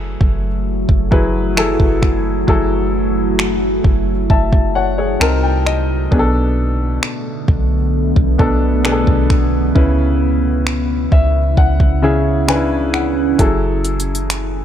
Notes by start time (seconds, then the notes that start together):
Already playing: F#1 F#3 A3 E4 F#4 G#4 A4 B4 E5
0.21 F#1, kick
0.89 F#1, kick
1.11 F#1 F#3 E4 G#4 B4, kick
1.56 F#3 E4 G#4 A4, finger snap
1.80 F#1, kick
2.02 finger snap, kick
2.47 F#1 F#3 E4 G#4 A4, kick
3.39 finger snap
3.84 F#1, kick
4.30 F#1 E5 A5, kick
4.53 kick
4.75 C#5 F#5
4.98 G#4 C#5
5.20 C2 C3 C4 D#4 A#4 A5, finger snap
5.43 G5
5.66 D#5, finger snap
6.11 B1 B2 D3 A3 B3 D4 G#4, kick
6.19 A4
7.03 finger snap
7.48 B1, kick
8.16 B1, kick
8.38 B1 B2 B3 D4 A4, kick
8.84 B2 B3 D4 G#4, finger snap
8.92 A4
9.07 B1, kick
9.30 finger snap, kick
9.75 C#2 C#3 C#4 E4 B4, kick
10.67 finger snap
11.12 C#2 E5, kick
11.57 C#2 C#4 F#5, kick
11.80 kick
12.02 C#3 C#4 E4 G#4 E5
12.48 C#3 C#4 D4 B4 G#5, finger snap
12.55 E4
12.94 F#5, finger snap
13.38 F#1 F#3 A3 E4 G#4 A4 G#5, kick, closed hi-hat
13.85 closed hi-hat
14.00 closed hi-hat
14.15 closed hi-hat
14.30 finger snap, closed hi-hat